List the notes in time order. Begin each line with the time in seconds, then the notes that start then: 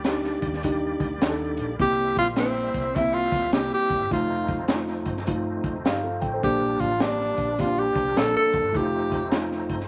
Already playing: D2 G3 A#3 G4 D5
0.04 D4 D#4 G4, snare, closed hi-hat
0.24 snare
0.42 D#2, kick, closed hi-hat
0.53 snare
0.63 D4 D#4 G4, kick, closed hi-hat
1.00 D2, kick, closed hi-hat
1.21 D#2 D4 D#4 G4, snare, closed hi-hat
1.30 A4
1.57 A#1, closed hi-hat
1.79 C2 A#3 C4 E4 G4 E5, kick, closed hi-hat
2.16 A#1 F4, kick, closed hi-hat
2.36 A#3 C4 D4, snare, closed hi-hat
2.45 E4
2.56 snare
2.74 C2, kick, closed hi-hat
2.95 A#3 C4 E4, kick, closed hi-hat
3.14 F4
3.31 D2, kick, snare, closed hi-hat
3.53 C2 A#3 C4 D4 G4, snare, closed hi-hat
3.60 E4
3.74 G4
3.89 F1, kick, closed hi-hat
4.00 G1
4.10 F1 F3 A3 D#4 F4, kick, closed hi-hat
4.48 F1, kick, closed hi-hat
4.68 A3 D#4 E4, snare, closed hi-hat
4.76 F4
4.88 snare
5.06 G1, kick, closed hi-hat
5.17 snare
5.27 A3 D#4 F4, kick, closed hi-hat
5.64 F1, kick, closed hi-hat
5.85 G1 D#4 G4 F5, snare, closed hi-hat
6.03 F4 A4
6.21 A1 G5, kick, closed hi-hat
6.34 A4 C5
6.43 A#1 G3 A#3 D4 G4, kick, closed hi-hat
6.80 A1 F4, kick, closed hi-hat
7.00 A#3 D4 G4, snare, closed hi-hat
7.20 snare
7.37 A#1, kick, closed hi-hat
7.58 A#3 C4 F4 G4, kick, closed hi-hat
7.65 D4
7.79 G4
7.95 C2, kick, closed hi-hat
8.16 A#1 A#3 D4 A4 A#4, snare, closed hi-hat
8.37 A4
8.53 F1, kick, closed hi-hat
8.65 G1
8.73 F1 F3 A3 C4 D#4 E4, kick, closed hi-hat
8.77 D#4 F4 G4
9.12 F1, kick, closed hi-hat
9.31 A3 D#4 F4, snare, closed hi-hat
9.52 snare
9.69 G1, kick, closed hi-hat
9.80 snare